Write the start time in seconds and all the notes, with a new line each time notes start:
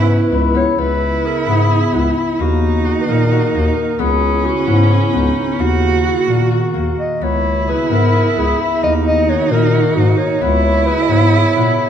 Already playing: G#2 C#3 B3 C#4 E4 F#4 G#4 B4
0.31 C#2 E4
0.54 B3 C#5
0.78 C#2 C#3 B3 E4 B4
1.25 G#4 A#4
1.47 G#2 B3 G#4
1.71 G#4
1.93 C#2 B3 E4
2.38 D#2 D#3 A#3 D#4 F#4
2.85 F#4
3.02 B4
3.08 A#2 A#3 A#4
3.31 F#4
3.54 D#2 A#3
3.76 A#4
3.99 C#2 C#3 B3 C#4 E4 G#4
4.45 F#4 G#4
4.67 G#2 B3 E4
4.90 G#4
5.13 C#2 B3 D#4
5.37 D#4
5.59 D#2 D#3 A#3 D#4 F#4
6.05 E4 F#4
6.27 A#2 A#3 F#4
6.51 F#4
6.74 D#2 A#3
6.99 D#5
7.20 C#2 C#3 B3 E4 C#5
7.68 G#4 B4
7.90 G#2 B3 A#4
8.14 G#4
8.36 C#2 B3 G#4
8.60 E5
8.82 D#2 D#3 A#3 D#4 F#4 D#5
9.07 D#5
9.29 F#4 C#5
9.51 A#2 A#3 A#4
9.74 F#4
9.96 G#2 A#3 F#4
10.18 C#5
10.41 C#2 C#3 B3 E4
10.64 C#5
10.87 G#4 B4
11.03 D#5
11.09 G#2 B3 C#5
11.33 G#4
11.55 A#2 B3